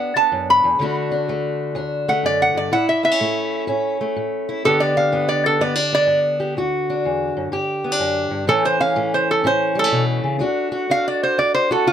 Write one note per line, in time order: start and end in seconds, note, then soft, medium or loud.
0.00 0.28 G2 medium
0.00 0.15 B3 medium
0.00 0.78 D4 medium
0.00 0.80 G4 medium
0.00 0.15 F#5 medium
0.16 0.78 B3 medium
0.16 0.47 A5 medium
0.32 0.63 F#2 medium
0.50 0.95 B5 medium
0.64 0.78 E2 medium
0.79 1.24 D2 medium
0.79 2.72 D3 medium
0.79 1.29 A3 medium
0.79 1.10 D4 medium
0.79 2.71 F#4 medium
1.12 1.75 D4 medium
1.28 1.73 D2 medium
1.28 2.07 A3 medium
1.75 2.20 D2 medium
1.75 2.70 D4 medium
2.08 2.70 A3 medium
2.08 2.24 F#5 medium
2.23 2.54 F#2 medium
2.23 2.40 D5 medium
2.42 2.56 F#5 medium
2.54 2.71 G2 medium
2.54 2.72 D5 medium
2.72 3.16 A2 medium
2.72 4.48 E4 medium
2.72 2.88 F#5 medium
2.89 3.03 E5 medium
3.03 3.11 B3 medium
3.03 3.97 E5 medium
3.11 3.67 C#4 soft
3.20 3.65 A2 medium
3.20 4.00 A3 medium
3.67 4.12 A2 medium
3.67 4.62 C#4 medium
4.01 4.62 A3 soft
4.16 4.61 A2 medium
4.49 4.64 E4 medium
4.65 5.09 G2 medium
4.65 8.47 D3 medium
4.65 5.11 B3 medium
4.65 4.96 D4 medium
4.65 6.39 G4 medium
4.65 4.80 A4 medium
4.80 4.96 D5 medium
4.97 5.60 D4 medium
4.97 5.27 F5 medium
5.12 5.57 G2 medium
5.12 5.59 B3 medium
5.29 5.44 D5 medium
5.46 5.60 A4 medium
5.61 6.05 G2 medium
5.61 5.76 B3 medium
5.61 5.92 D5 medium
5.76 6.56 D4 medium
5.92 6.54 B3 medium
5.92 6.19 D5 medium
6.07 6.52 G2 medium
6.40 6.54 G4 medium
6.57 7.01 D2 medium
6.57 7.51 F#4 medium
6.90 7.51 D4 medium
7.05 7.36 E2 medium
7.37 7.52 F#2 medium
7.52 7.97 G2 medium
7.52 8.47 G4 medium
7.84 7.92 B3 medium
7.92 8.48 D4 soft
7.99 8.30 F#2 medium
8.31 8.47 G2 medium
8.47 8.92 A2 medium
8.47 10.38 E3 medium
8.47 8.95 A3 medium
8.47 8.79 C#4 medium
8.47 8.64 A4 medium
8.65 8.80 C5 medium
8.80 9.44 C#4 medium
8.80 9.11 F5 medium
8.96 9.41 A2 medium
8.96 9.75 A3 medium
9.14 9.29 C5 medium
9.31 9.45 A4 medium
9.44 9.89 A2 medium
9.44 10.39 C#4 medium
9.44 9.77 C5 medium
9.75 9.84 G3 medium
9.75 10.04 A4 medium
9.84 10.38 A3 soft
9.92 10.23 B2 medium
10.24 10.40 C#3 medium
10.39 10.85 D2 medium
10.39 11.93 A3 medium
10.39 10.90 D4 medium
10.39 10.71 F#4 medium
10.72 11.68 F#4 medium
10.90 11.34 D2 medium
10.90 11.93 D4 medium
10.90 11.06 F5 medium
11.08 11.22 D5 medium
11.23 11.38 C5 medium
11.38 11.82 D2 medium
11.38 11.53 D5 medium
11.54 11.69 C5 medium
11.71 11.93 F#4 medium
11.71 11.86 A4 medium
11.87 11.93 D2 medium
11.87 11.93 F4 medium